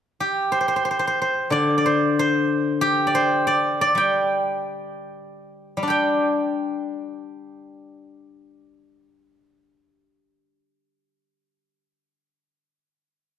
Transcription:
0.20 2.56 G4 medium
0.52 0.60 C5 medium
0.61 0.68 C5 soft
0.68 0.76 C5 soft
0.76 0.85 C5 soft
0.85 0.90 C5 soft
0.91 0.99 C5 soft
0.99 1.07 C5 soft
1.07 1.21 C5 soft
1.22 1.85 C5 medium
1.50 3.45 D3 soft
1.50 1.77 D5 medium
1.78 3.06 D5 soft
1.86 2.19 C5 medium
2.19 3.14 C5 medium
2.81 5.17 G4 medium
3.07 3.46 D5 medium
3.15 5.13 C5 medium
3.47 3.81 D5 medium
3.81 5.66 D5 medium
3.95 5.76 G3 soft
3.95 5.53 G5 medium
5.77 11.84 G3 soft
5.83 10.59 D4 soft
5.88 9.88 G4 soft
5.88 9.23 G5 medium

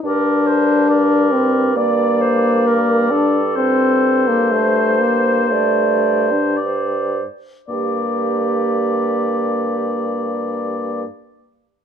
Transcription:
0.03 3.52 G2 soft
0.03 1.33 D4 medium
0.03 0.84 A#4 soft
0.03 0.48 D5 soft
0.47 0.88 C5 soft
0.89 1.78 A#4 soft
0.89 1.73 D5 soft
1.32 1.75 C4 soft
1.76 3.12 A#3 medium
1.76 2.22 D5 soft
1.76 3.57 D5 soft
2.21 2.68 C5 soft
2.67 3.13 A#4 soft
3.10 3.43 D4 medium
3.10 4.55 A4 soft
3.56 7.23 G2 soft
3.56 4.29 C4 medium
3.56 6.58 C5 soft
4.28 4.53 A#3 soft
4.51 5.01 A3 soft
4.51 5.54 C5 soft
5.00 5.53 A#3 soft
5.51 6.33 A3 soft
5.51 6.42 D5 soft
6.31 6.58 D4 soft
6.57 7.26 C5 soft
6.57 7.26 D5 soft
7.68 11.05 G2 soft
7.68 11.05 A#3 soft
7.68 11.05 G4 soft
7.68 11.04 D5 soft

